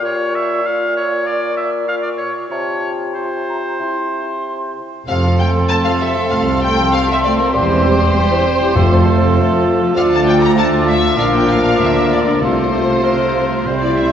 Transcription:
0.01 2.34 A#2 medium
0.01 0.59 F4 soft
0.01 0.37 C#5 medium
0.01 0.60 C#6 soft
0.35 0.68 E5 medium
0.62 1.84 F4 medium
0.62 0.96 F5 medium
0.62 1.85 C#6 soft
0.96 1.28 C#5 medium
1.27 1.56 D5 medium
1.57 1.71 E5 medium
1.87 2.49 F4 soft
1.87 1.95 F5 medium
1.87 2.53 C#6 soft
2.02 2.10 D5 soft
2.18 2.33 C#5 soft
2.49 3.78 C3 soft
2.49 3.14 F4 soft
2.49 2.92 C#5 medium
2.49 3.15 A5 soft
3.14 3.82 F4 soft
3.14 4.72 C5 soft
3.14 3.23 A5 soft
3.49 3.56 A#5 soft
3.80 4.74 C3 soft
3.80 4.76 E4 soft
3.80 4.75 C6 soft
5.07 5.60 F1 medium
5.07 5.60 F2 medium
5.07 5.23 C3 medium
5.07 7.56 F3 soft
5.07 8.71 C4 medium
5.07 7.50 A4 medium
5.07 7.51 A4 medium
5.07 5.15 F5 medium
5.07 5.37 F5 medium
5.07 9.65 C6 medium
5.24 5.39 F3 medium
5.39 5.55 A3 soft
5.39 5.47 G5 medium
5.39 5.48 G5 medium
5.56 5.71 C4 medium
5.69 5.86 A3 medium
5.69 5.75 A5 medium
5.69 5.76 A5 medium
5.84 6.01 F3 soft
5.84 6.00 F5 medium
5.84 5.91 F5 medium
6.00 6.16 C3 soft
6.00 6.31 E5 medium
6.00 6.09 E5 medium
6.16 6.31 F3 soft
6.30 6.83 C2 medium
6.30 6.46 A3 soft
6.30 6.38 F5 medium
6.30 6.62 F5 medium
6.47 6.62 C4 soft
6.61 6.78 A3 medium
6.61 6.92 G5 medium
6.61 6.93 G5 medium
6.78 6.93 F3 medium
6.93 7.09 C3 medium
6.93 6.99 F5 medium
6.93 7.08 F5 medium
7.07 7.24 F3 medium
7.07 7.23 E5 medium
7.12 7.17 E5 medium
7.23 7.39 A3 medium
7.23 7.38 D5 medium
7.23 7.30 D5 medium
7.38 7.55 C4 medium
7.38 7.44 A#4 medium
7.38 7.54 A#4 medium
7.53 8.05 E1 medium
7.53 8.06 E2 medium
7.53 7.68 C3 medium
7.53 8.77 G3 medium
7.53 8.77 G4 medium
7.53 8.73 G4 medium
7.53 8.74 G4 medium
7.53 9.61 C5 medium
7.53 9.62 C5 medium
7.70 7.85 E3 medium
7.85 8.00 G3 medium
7.99 8.14 C4 medium
8.15 8.30 G3 medium
8.30 8.45 E3 medium
8.44 8.60 C3 medium
8.60 8.75 E3 medium
8.75 9.26 F1 medium
8.75 9.62 F2 medium
8.75 9.26 F2 medium
8.75 8.90 C3 medium
8.75 9.95 F3 medium
8.75 9.94 A3 medium
8.75 9.95 F4 medium
8.75 9.94 F4 medium
8.75 9.96 A4 medium
8.92 9.07 F3 medium
9.07 9.22 A3 medium
9.23 9.37 C4 medium
9.38 9.52 A3 medium
9.53 9.67 F3 medium
9.67 9.81 C3 medium
9.82 9.96 F3 medium
9.96 11.13 D2 medium
9.96 11.14 D2 medium
9.96 10.52 F3 medium
9.96 10.53 A3 medium
9.96 10.53 D4 medium
9.96 10.53 F4 medium
9.96 10.53 A4 medium
9.96 10.02 F5 medium
9.96 10.52 D6 medium
10.10 10.25 A5 medium
10.14 10.20 A5 medium
10.25 10.32 G5 medium
10.25 10.34 G5 medium
10.40 10.46 A#5 medium
10.45 10.50 A#5 medium
10.55 11.15 F3 medium
10.55 11.16 A3 medium
10.55 11.17 D4 medium
10.55 11.16 F4 medium
10.55 11.17 F4 medium
10.55 11.16 A4 medium
10.55 10.65 A5 medium
10.55 10.66 A5 medium
10.55 11.16 D6 soft
10.88 10.96 E5 medium
10.88 11.18 E5 medium
11.15 11.79 A#1 medium
11.15 11.80 A#2 medium
11.15 12.25 F3 medium
11.15 12.41 A#3 medium
11.15 12.41 D4 medium
11.15 12.40 D4 medium
11.15 12.40 F4 medium
11.15 12.25 F4 medium
11.15 12.38 A#4 medium
11.15 11.24 F5 medium
11.15 12.39 D6 medium
11.20 11.34 F5 medium
11.34 11.48 G5 medium
11.34 11.49 G5 medium
11.48 11.79 F5 medium
11.48 11.80 F5 medium
11.79 12.42 D2 medium
11.79 12.42 D3 medium
11.79 12.11 E5 medium
12.11 12.19 D5 medium
12.11 12.43 D5 medium
12.41 13.64 C2 soft
12.41 13.32 C3 medium
12.41 13.64 C3 soft
12.41 13.69 F3 soft
12.41 13.64 A3 medium
12.41 13.49 A3 soft
12.41 13.49 F4 soft
12.41 13.64 F4 medium
12.41 13.67 F4 medium
12.41 13.05 A4 soft
12.41 13.82 C5 medium
12.41 13.80 C5 medium
12.41 13.65 C6 soft
13.04 13.68 A#4 soft
13.66 14.12 C2 soft
13.66 14.12 C3 medium
13.66 14.12 C3 soft
13.66 14.12 G3 soft
13.66 14.12 C4 soft
13.66 14.12 E4 soft
13.66 14.12 C5 soft
13.66 14.12 C6 soft
13.82 13.98 D5 soft
13.82 13.90 D5 soft
13.97 14.12 E5 medium
13.97 14.12 E5 soft

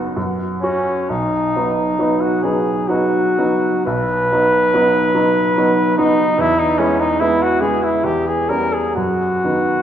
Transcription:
0.00 0.11 F#1 soft
0.00 0.12 F#2 medium
0.00 0.19 F#3 soft
0.00 0.16 B3 soft
0.00 0.19 D#4 soft
0.00 0.13 F#4 medium
0.17 1.07 F#2 soft
0.62 1.11 C#4 medium
0.62 1.06 C#4 soft
0.62 1.06 F#4 soft
1.10 1.54 B1 soft
1.10 2.22 D#4 medium
1.56 1.96 F#3 soft
1.56 1.96 B3 soft
1.56 1.96 D#4 soft
1.99 2.39 F#3 soft
1.99 2.40 B3 soft
1.99 2.40 D#4 soft
2.21 2.44 F#4 medium
2.43 2.84 F#3 soft
2.43 2.85 B3 soft
2.43 2.85 D#4 soft
2.43 2.90 G#4 medium
2.88 3.33 F#3 soft
2.88 3.33 B3 soft
2.88 3.34 D#4 soft
2.88 3.86 F#4 medium
3.39 3.83 F#3 soft
3.39 3.83 B3 soft
3.39 3.83 D#4 soft
3.86 4.31 B1 soft
3.86 5.94 B4 medium
4.32 4.71 F#3 soft
4.32 4.71 B3 soft
4.32 4.71 D#4 soft
4.74 5.11 F#3 soft
4.74 5.12 B3 soft
4.74 5.12 D#4 soft
5.15 5.52 F#3 soft
5.15 5.53 B3 soft
5.15 5.53 D#4 soft
5.57 5.95 F#3 soft
5.57 5.95 B3 soft
5.57 5.95 D#4 soft
5.98 6.35 F#3 soft
5.98 6.35 B3 soft
5.98 6.42 D#4 medium
5.98 6.35 D#4 soft
6.38 6.78 E2 medium
6.38 6.61 E4 medium
6.59 6.80 D#4 medium
6.78 7.16 G#3 soft
6.78 7.17 B3 soft
6.78 7.01 C#4 medium
6.78 7.17 E4 soft
7.00 7.21 D#4 medium
7.20 7.58 G#3 soft
7.20 7.59 B3 soft
7.20 7.44 E4 medium
7.20 7.59 E4 soft
7.42 7.62 F#4 medium
7.61 8.01 G#3 soft
7.61 8.01 B3 soft
7.61 8.02 E4 soft
7.61 7.85 G#4 medium
7.83 8.06 E4 medium
8.04 8.48 E2 soft
8.04 8.29 G4 medium
8.27 8.51 G#4 medium
8.49 8.93 G3 soft
8.49 8.92 B3 soft
8.49 8.93 C#4 soft
8.49 8.74 A#4 medium
8.73 8.95 G#4 medium
8.96 9.43 F#2 soft
8.96 9.82 F#4 medium
9.44 9.82 D#3 soft
9.44 9.82 B3 soft
9.44 9.82 D#4 soft

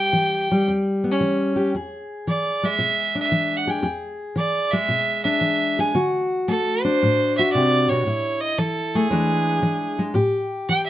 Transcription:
0.00 0.11 A2 medium
0.00 0.50 G3 medium
0.00 1.55 G4 medium
0.00 0.70 G5 loud
0.13 0.63 E3 medium
0.51 1.73 G3 medium
0.68 1.17 E2 medium
1.04 1.11 B3 medium
1.11 1.73 C#4 medium
1.21 1.70 E3 medium
1.56 1.71 G4 medium
1.75 2.23 E2 medium
1.75 3.66 G#4 medium
2.27 2.76 E3 medium
2.27 2.67 D5 medium
2.63 3.83 G#3 medium
2.63 3.16 E5 medium
2.79 3.28 B2 medium
3.15 3.86 D4 medium
3.21 3.58 E5 loud
3.32 3.81 E3 medium
3.57 3.72 F#5 medium
3.67 3.81 G#4 medium
3.67 3.85 G5 medium
3.82 4.33 E2 medium
3.82 5.77 G#4 medium
4.36 4.86 E3 medium
4.36 4.72 D5 medium
4.71 5.93 G#3 medium
4.71 5.23 E5 loud
4.89 5.38 B2 medium
5.24 5.93 D4 medium
5.24 5.81 E5 loud
5.41 5.91 E3 medium
5.79 5.93 G#4 medium
5.79 5.96 G#5 medium
5.95 6.44 D3 medium
5.95 7.36 F#4 medium
6.48 6.97 A3 medium
6.48 6.84 A4 medium
6.83 8.04 D4 medium
6.83 7.36 C5 loud
7.03 7.51 A2 medium
7.37 8.05 F#4 medium
7.37 7.52 E5 loud
7.52 7.90 C3 medium
7.52 7.91 D5 loud
7.89 8.06 B2 medium
7.89 8.43 C#5 medium
8.06 8.55 A2 medium
8.06 10.14 E4 medium
8.41 8.61 D#5 medium
8.58 9.08 E3 medium
8.58 8.97 A4 medium
8.95 9.10 A3 medium
8.95 10.01 G#4 medium
9.10 9.60 E2 medium
9.10 9.61 E3 medium
9.10 9.98 G#3 medium
9.10 10.15 D4 medium
9.63 10.13 E3 medium
9.99 10.14 G#3 medium
10.14 10.65 A2 medium
10.14 10.90 G4 medium
10.69 10.90 E3 medium
10.69 10.85 G5 loud
10.86 10.90 E5 medium

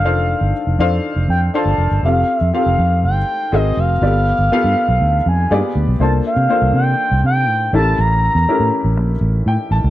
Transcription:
0.00 0.34 F1 loud
0.00 0.04 D4 medium
0.00 0.05 F4 medium
0.00 0.05 A4 medium
0.00 0.06 C5 medium
0.00 0.06 F5 medium
0.00 1.26 F5 loud
0.04 0.52 D4 medium
0.04 0.53 F4 medium
0.04 0.53 A4 medium
0.04 0.53 C5 medium
0.04 0.53 F5 medium
0.41 0.51 G1 medium
0.67 0.77 F1 medium
0.79 0.99 F2 medium
0.79 1.27 D4 medium
0.79 1.27 F4 medium
0.79 1.28 A4 medium
0.79 1.28 C5 medium
0.79 1.28 F5 loud
1.16 1.26 F1 medium
1.28 1.48 F2 medium
1.28 1.41 G5 loud
1.54 1.86 D4 medium
1.54 1.86 F4 medium
1.54 1.86 A4 medium
1.54 1.86 C5 medium
1.54 1.86 F5 medium
1.54 2.01 A5 loud
1.65 1.76 G1 medium
1.78 1.88 F1 medium
1.91 2.01 G1 medium
2.03 2.23 F1 loud
2.03 2.36 C4 medium
2.03 2.36 F4 medium
2.03 2.36 G4 medium
2.03 2.36 A4 medium
2.03 2.39 F5 medium
2.03 2.36 F5 medium
2.39 2.51 F2 medium
2.39 2.50 E5 medium
2.54 3.17 C4 medium
2.54 3.17 F4 medium
2.54 3.18 G4 medium
2.54 3.18 A4 medium
2.54 3.18 F5 medium
2.54 3.00 F5 loud
2.66 2.76 F1 medium
2.78 3.05 F2 loud
3.03 3.23 G1 medium
3.03 3.56 G5 medium
3.52 3.72 G#1 medium
3.52 3.92 C4 medium
3.52 3.92 F#4 medium
3.52 3.92 G#4 medium
3.52 3.92 A#4 medium
3.52 3.93 D#5 medium
3.52 3.81 D#5 medium
3.77 3.97 F1 medium
3.77 5.27 F5 loud
4.02 4.31 G1 loud
4.02 4.34 B3 medium
4.02 4.34 F4 medium
4.02 4.34 G4 medium
4.02 4.34 A4 medium
4.02 4.34 D5 medium
4.39 4.49 G1 medium
4.51 5.16 B3 medium
4.51 5.16 F4 medium
4.51 5.16 G4 medium
4.51 5.16 A4 medium
4.51 5.16 F5 medium
4.51 muted fingered electric bass stroke soft
4.64 4.74 G2 medium
4.89 4.98 B1 medium
5.01 5.20 D2 medium
5.26 5.46 F2 medium
5.26 5.73 G#5 loud
5.50 5.61 G2 medium
5.50 5.57 A#3 medium
5.50 5.90 F4 medium
5.50 5.90 G4 medium
5.50 5.91 G#4 medium
5.50 5.91 D5 medium
5.57 5.93 B3 medium
5.75 5.85 D2 medium
5.88 5.97 B1 loud
6.00 6.19 C2 loud
6.00 6.32 A#3 medium
6.00 6.32 D4 medium
6.00 6.32 F4 medium
6.00 6.33 A4 medium
6.00 6.33 C5 medium
6.00 6.13 A5 medium
6.26 6.72 F5 medium
6.36 6.47 C3 loud
6.49 7.13 A#3 medium
6.49 7.14 D4 medium
6.49 7.14 F4 medium
6.49 7.14 A4 medium
6.49 7.14 C5 medium
6.62 6.72 C2 medium
6.74 6.94 C3 loud
6.74 7.21 G5 medium
7.11 7.21 C2 medium
7.24 7.48 C3 medium
7.24 7.71 G5 loud
7.48 7.68 A2 medium
7.73 7.93 A1 medium
7.73 8.33 A3 medium
7.73 8.33 C#4 medium
7.73 8.33 E4 medium
7.73 8.33 G4 medium
7.73 8.33 A#4 medium
7.73 8.01 A5 loud
7.98 8.28 A1 loud
7.98 9.48 A#5 loud
8.35 8.45 E2 loud
8.48 9.12 A3 medium
8.48 9.12 C#4 medium
8.48 9.12 E4 medium
8.48 9.12 G4 medium
8.48 9.13 A#4 medium
8.48 muted fingered electric bass stroke soft
8.60 8.70 A2 medium
8.85 8.97 A1 medium
8.97 9.17 A#1 loud
9.21 9.41 A1 medium
9.46 9.56 A2 medium
9.46 9.70 G5 medium
9.71 9.81 A1 medium
9.71 9.90 A5 medium
9.84 9.90 C#2 loud

